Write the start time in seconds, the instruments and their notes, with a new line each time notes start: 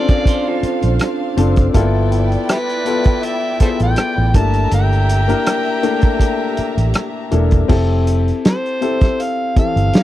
Already playing: grand piano C4 C#4 D4 F4 A4, violin section D4 C5 F5, harmonica D5
0.08 clean electric guitar A#4 D5, kick, cross-stick, closed hi-hat
0.26 clean electric guitar A4 C5, kick, closed hi-hat
0.47 clean electric guitar F4 A4
0.63 muted fingered electric bass stroke, closed hi-hat
0.82 fingered electric bass A#1, closed hi-hat
0.99 cross-stick, closed hi-hat
1.37 fingered electric bass F#1, grand piano C4 D4 F4 A4, closed hi-hat
1.56 kick, closed hi-hat
1.74 fingered electric bass G1, grand piano A#3 E4 F4 A4, violin section E4 D5 G5, kick, closed hi-hat
1.80 grand piano B3
2.12 closed hi-hat
2.32 closed hi-hat
2.49 harmonica E4 G4 B4, cross-stick, closed hi-hat
2.69 closed hi-hat
2.85 grand piano B3 E4 F4 A4, closed hi-hat
3.04 kick, closed hi-hat
3.23 harmonica E5, closed hi-hat
3.60 grand piano B3 E4 F4 G#4, harmonica A4 C5 E5, muted fingered electric bass stroke, kick, closed hi-hat
3.67 grand piano A4
3.80 fingered electric bass A1, harmonica G5, closed hi-hat
3.96 cross-stick, closed hi-hat
4.18 fingered electric bass A1
4.34 grand piano A3 A#3 D4 E4, violin section G4 E5 A#5, harmonica A5, kick, closed hi-hat
4.53 closed hi-hat
4.71 fingered electric bass G1, harmonica G5, closed hi-hat
4.93 closed hi-hat
5.09 closed hi-hat
5.28 grand piano A#3 D4 E4 A#4, closed hi-hat
5.46 cross-stick, closed hi-hat
5.83 grand piano A3 A#3 D4 E4, closed hi-hat
6.01 kick, closed hi-hat
6.20 kick, closed hi-hat
6.57 muted fingered electric bass stroke, closed hi-hat
6.77 fingered electric bass A1, closed hi-hat
6.94 cross-stick, closed hi-hat
7.31 fingered electric bass E1, grand piano A#3 D4 E4 A4, closed hi-hat
7.51 kick, closed hi-hat
7.68 fingered electric bass F1, grand piano C4 E4 G4 A4, kick, crash
8.07 closed hi-hat
8.28 closed hi-hat
8.45 harmonica C5, snare, closed hi-hat
8.66 closed hi-hat
8.81 grand piano C4 E4 G4 A4, closed hi-hat
9.01 kick, snare, closed hi-hat
9.20 harmonica F5, closed hi-hat
9.56 grand piano E3 C4 G4 A4, harmonica F5, muted fingered electric bass stroke, kick, closed hi-hat
9.76 fingered electric bass G1, closed hi-hat
9.93 snare, closed hi-hat